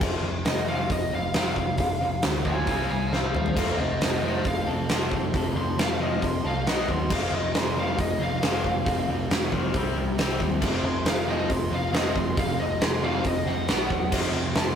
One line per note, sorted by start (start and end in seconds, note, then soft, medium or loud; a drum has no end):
0.01 0.20 F1 medium
0.01 0.22 F2 medium
0.01 0.22 C3 medium
0.01 0.22 F3 loud
0.01 kick loud
0.01 crash medium
0.23 0.42 F1 medium
0.23 0.44 F2 medium
0.23 0.44 C3 medium
0.45 0.84 F1 medium
0.45 0.67 F2 medium
0.45 0.67 C3 medium
0.45 0.67 D#5 medium
0.45 snare loud
0.45 open hi-hat medium
0.69 0.89 F2 medium
0.69 0.90 C3 medium
0.69 0.90 F3 medium
0.69 0.90 F5 medium
0.90 1.09 F1 medium
0.90 1.10 F2 medium
0.90 1.11 C3 medium
0.90 1.12 D#5 medium
0.90 kick loud
0.90 open hi-hat medium
1.12 1.32 F1 medium
1.12 1.33 F2 medium
1.12 1.33 C3 medium
1.12 1.35 F5 medium
1.34 1.54 F1 medium
1.34 1.55 F2 medium
1.34 1.55 C3 medium
1.34 1.56 F3 medium
1.34 2.22 F5 loud
1.34 snare loud
1.34 open hi-hat soft
1.56 1.76 F1 medium
1.56 1.77 F2 medium
1.56 1.77 C3 medium
1.56 kick medium
1.78 1.98 F1 medium
1.78 1.99 F2 medium
1.78 1.99 C3 medium
1.78 kick loud
1.78 open hi-hat medium
2.01 2.20 F1 medium
2.01 2.21 F2 medium
2.01 2.21 C3 medium
2.22 2.62 D2 medium
2.22 2.43 F2 medium
2.22 2.43 C3 medium
2.22 snare loud
2.22 open hi-hat medium
2.45 2.67 F2 medium
2.45 2.66 C3 medium
2.45 2.67 F3 medium
2.45 2.67 F5 medium
2.45 2.68 G#5 medium
2.45 kick medium
2.67 2.87 C2 medium
2.67 2.88 C3 medium
2.67 2.89 G3 medium
2.67 2.89 C4 medium
2.67 2.89 F5 medium
2.67 2.90 G#5 medium
2.67 kick loud
2.67 open hi-hat medium
2.89 3.09 C2 medium
2.89 3.10 C3 medium
2.89 3.10 G3 medium
2.89 3.11 F5 medium
2.89 3.12 G#5 medium
3.12 3.32 C2 medium
3.12 3.33 C3 medium
3.12 3.33 G3 medium
3.12 3.34 C4 medium
3.12 3.33 C5 medium
3.12 3.34 F5 medium
3.12 snare medium
3.23 high tom medium
3.34 3.54 D#2 medium
3.34 3.55 C3 medium
3.34 3.55 G3 medium
3.34 3.56 C5 medium
3.34 3.57 F5 medium
3.34 mid tom medium
3.46 floor tom medium
3.56 3.76 F1 medium
3.56 3.78 F2 medium
3.56 3.78 C3 medium
3.56 4.66 F3 medium
3.56 3.78 F3 medium
3.56 4.66 A3 loud
3.56 4.67 C4 medium
3.56 4.66 F4 medium
3.56 3.78 A4 medium
3.56 4.66 A4 loud
3.56 3.79 F5 medium
3.56 kick loud
3.56 crash medium
3.78 3.99 F1 medium
3.78 3.99 F2 medium
3.78 4.00 C3 medium
3.78 3.99 C5 medium
3.78 4.01 D#5 medium
4.01 4.40 F1 medium
4.01 4.21 F2 medium
4.01 4.21 C3 medium
4.01 4.22 C5 medium
4.01 4.24 D#5 medium
4.01 snare loud
4.01 open hi-hat medium
4.23 4.44 F2 medium
4.23 4.44 C3 medium
4.23 4.45 F3 loud
4.23 4.45 C5 medium
4.23 4.46 D#5 medium
4.45 4.64 F1 medium
4.45 4.66 F2 medium
4.45 4.66 C3 medium
4.45 4.68 F5 loud
4.45 kick loud
4.45 open hi-hat medium
4.67 4.87 F1 medium
4.67 4.88 F2 medium
4.67 4.88 C3 medium
4.67 4.87 F3 medium
4.67 4.88 A3 medium
4.67 4.89 C4 medium
4.67 4.89 F4 medium
4.67 4.88 A4 medium
4.89 5.09 F1 medium
4.89 5.10 F2 medium
4.89 5.11 C3 medium
4.89 5.32 F3 medium
4.89 5.11 F3 medium
4.89 5.33 A3 medium
4.89 5.33 C4 medium
4.89 5.33 F4 medium
4.89 5.34 A4 medium
4.89 snare loud
4.89 open hi-hat medium
5.11 5.31 F1 medium
5.11 5.32 F2 medium
5.11 5.32 C3 medium
5.11 kick medium
5.33 5.53 F1 medium
5.33 5.54 F2 medium
5.33 5.54 C3 medium
5.33 6.43 F3 medium
5.33 6.43 A3 medium
5.33 6.44 C4 medium
5.33 6.44 F4 loud
5.33 6.43 A4 loud
5.33 kick loud
5.33 open hi-hat medium
5.55 5.75 F1 medium
5.55 5.76 F2 medium
5.55 5.76 C3 medium
5.55 5.78 C6 loud
5.78 6.16 F1 medium
5.78 5.98 F2 medium
5.78 5.98 C3 medium
5.78 6.01 F5 medium
5.78 snare loud
5.78 open hi-hat soft
6.00 6.21 F2 medium
6.00 6.21 C3 medium
6.00 6.21 F3 loud
6.00 6.23 D#5 medium
6.22 6.41 F1 medium
6.22 6.42 F2 medium
6.22 6.43 C3 medium
6.22 6.45 C6 loud
6.22 kick medium
6.22 open hi-hat soft
6.44 6.63 C2 medium
6.44 6.64 F2 medium
6.44 6.64 C3 medium
6.44 6.66 F3 medium
6.44 6.66 A3 medium
6.44 6.66 C4 medium
6.44 6.66 F4 medium
6.44 6.65 A4 medium
6.44 6.67 F5 medium
6.65 6.86 B1 medium
6.65 7.09 B2 medium
6.65 6.88 B2 medium
6.65 7.09 F#3 medium
6.65 6.88 F#3 medium
6.65 7.10 B3 medium
6.65 6.88 B3 loud
6.65 7.10 F#4 medium
6.65 6.89 D#5 medium
6.65 snare loud
6.65 open hi-hat medium
6.88 7.07 D#2 medium
6.88 7.09 B2 medium
6.88 7.09 F#3 medium
6.88 7.11 C6 medium
6.88 kick medium
7.09 7.29 F1 medium
7.09 7.32 F2 loud
7.09 7.32 C3 medium
7.09 8.19 F3 loud
7.09 7.32 F3 loud
7.09 8.20 A3 loud
7.09 8.20 C4 medium
7.09 8.18 F4 loud
7.09 7.33 F5 medium
7.09 kick loud
7.09 crash medium
7.32 7.51 F1 medium
7.32 7.53 F2 medium
7.32 7.54 C3 medium
7.32 7.55 D#5 medium
7.54 7.92 F1 medium
7.54 7.75 F2 medium
7.54 7.75 C3 medium
7.54 7.78 C6 loud
7.54 snare loud
7.54 open hi-hat medium
7.76 7.97 F2 loud
7.76 7.98 C3 medium
7.76 7.98 F3 loud
7.76 7.99 F5 medium
7.98 8.18 F1 medium
7.98 8.18 F2 medium
7.98 8.19 C3 medium
7.98 8.21 D#5 medium
7.98 kick loud
7.98 open hi-hat medium
8.19 8.39 F1 medium
8.19 8.41 F2 medium
8.19 8.41 C3 medium
8.19 8.40 F3 medium
8.19 8.41 A3 medium
8.19 8.43 C4 medium
8.19 8.41 F4 medium
8.19 9.07 F5 medium
8.41 8.62 F1 medium
8.41 8.64 F2 medium
8.41 8.64 C3 medium
8.41 8.83 F3 medium
8.41 8.64 F3 medium
8.41 8.85 A3 medium
8.41 8.86 C4 medium
8.41 8.86 F4 medium
8.41 snare loud
8.41 open hi-hat medium
8.64 8.83 F1 medium
8.64 8.85 F2 medium
8.64 8.85 C3 medium
8.64 kick medium
8.84 9.05 F1 medium
8.84 9.07 F2 medium
8.84 9.07 C3 medium
8.84 9.72 F3 medium
8.84 9.73 A3 loud
8.84 9.76 C4 medium
8.84 9.73 F4 loud
8.84 kick loud
8.84 open hi-hat medium
9.09 9.28 F1 medium
9.09 9.29 F2 medium
9.09 9.29 C3 medium
9.30 9.68 F1 medium
9.30 9.51 F2 medium
9.30 9.51 C3 medium
9.30 snare loud
9.30 open hi-hat medium
9.52 9.73 F2 medium
9.52 9.73 C3 medium
9.52 9.73 F3 loud
9.52 kick medium
9.74 9.93 C2 medium
9.74 10.16 C3 medium
9.74 9.95 C3 medium
9.74 10.17 G3 medium
9.74 9.96 G3 medium
9.74 9.96 C4 loud
9.74 10.18 C4 medium
9.74 10.18 G4 loud
9.74 kick loud
9.74 open hi-hat soft
9.96 10.15 C2 medium
9.96 10.17 C3 medium
9.96 10.17 G3 medium
10.17 10.37 C2 medium
10.17 10.60 C3 medium
10.17 10.39 C3 medium
10.17 10.61 G3 medium
10.17 10.39 G3 medium
10.17 10.63 C4 loud
10.17 10.39 C4 loud
10.17 10.62 G4 loud
10.17 snare loud
10.17 open hi-hat medium
10.40 10.59 D#2 medium
10.40 10.60 C3 medium
10.40 10.60 G3 medium
10.40 kick medium
10.61 10.81 F1 medium
10.61 10.83 F2 medium
10.61 10.83 C3 medium
10.61 11.70 F3 medium
10.61 10.84 F3 loud
10.61 11.70 A3 loud
10.61 11.71 C4 medium
10.61 11.69 F4 loud
10.61 kick loud
10.61 crash medium
10.84 11.03 F1 medium
10.84 11.04 F2 medium
10.84 11.04 C3 medium
10.84 11.06 C6 loud
11.06 11.44 F1 medium
11.06 11.26 F2 medium
11.06 11.26 C3 medium
11.06 11.28 F5 medium
11.06 snare loud
11.06 open hi-hat medium
11.28 11.49 F2 loud
11.28 11.49 C3 medium
11.28 11.49 F3 loud
11.28 11.50 D#5 loud
11.50 11.69 F1 medium
11.50 11.70 F2 medium
11.50 11.70 C3 medium
11.50 11.72 C6 loud
11.50 kick loud
11.50 open hi-hat medium
11.71 11.91 F1 medium
11.71 11.91 F2 medium
11.71 11.91 C3 medium
11.71 11.91 F3 medium
11.71 11.92 A3 medium
11.71 11.92 C4 medium
11.71 11.92 F4 medium
11.75 11.95 F5 medium
11.92 12.12 F1 medium
11.92 12.14 F2 medium
11.92 12.14 C3 medium
11.92 12.35 F3 medium
11.92 12.14 F3 medium
11.92 12.36 A3 medium
11.92 12.36 C4 medium
11.92 12.37 F4 medium
11.92 12.16 D#5 loud
11.92 snare loud
11.92 open hi-hat medium
12.15 12.34 F1 medium
12.15 12.35 F2 medium
12.15 12.35 C3 medium
12.15 12.38 C6 medium
12.15 kick medium
12.36 12.56 F1 medium
12.36 12.57 F2 medium
12.36 12.57 C3 medium
12.36 13.45 F3 medium
12.36 13.46 A3 loud
12.36 13.46 C4 medium
12.36 13.45 F4 loud
12.36 12.59 F5 medium
12.36 kick loud
12.36 open hi-hat medium
12.60 12.79 F1 medium
12.60 12.79 F2 medium
12.60 12.79 C3 medium
12.60 12.81 D#5 loud
12.81 13.20 F1 medium
12.81 13.01 F2 medium
12.81 13.01 C3 medium
12.81 13.03 C6 loud
12.81 snare loud
12.81 open hi-hat medium
13.03 13.23 F2 medium
13.03 13.24 C3 medium
13.03 13.24 F3 loud
13.03 13.25 F5 loud
13.24 13.44 F1 medium
13.24 13.45 F2 medium
13.24 13.45 C3 medium
13.24 13.47 D#5 medium
13.24 kick loud
13.24 open hi-hat medium
13.46 13.70 F1 medium
13.46 13.67 F2 medium
13.46 13.67 C3 medium
13.46 13.68 F3 medium
13.46 13.68 A3 medium
13.46 13.67 C4 medium
13.46 13.67 F4 medium
13.46 14.11 F#5 loud
13.67 13.87 B1 medium
13.67 14.10 B2 medium
13.67 13.89 B2 medium
13.67 14.11 F#3 medium
13.67 13.89 F#3 medium
13.67 13.90 B3 loud
13.67 14.12 B3 loud
13.67 14.12 F#4 medium
13.67 snare loud
13.67 open hi-hat medium
13.90 14.09 E1 medium
13.90 14.10 B2 medium
13.90 14.10 F#3 medium
13.90 kick medium
14.11 14.31 F1 loud
14.11 14.33 F2 medium
14.11 14.33 C3 medium
14.11 14.75 F3 medium
14.11 14.33 F3 medium
14.11 14.75 A3 loud
14.11 14.75 C4 loud
14.11 14.75 F4 loud
14.11 kick loud
14.11 crash loud
14.34 14.53 F1 medium
14.34 14.54 F2 medium
14.34 14.54 C3 medium
14.55 14.75 F1 medium
14.55 14.75 F2 medium
14.55 14.75 C3 medium
14.55 14.67 A5 loud
14.55 snare loud
14.55 open hi-hat medium
14.68 14.75 C6 medium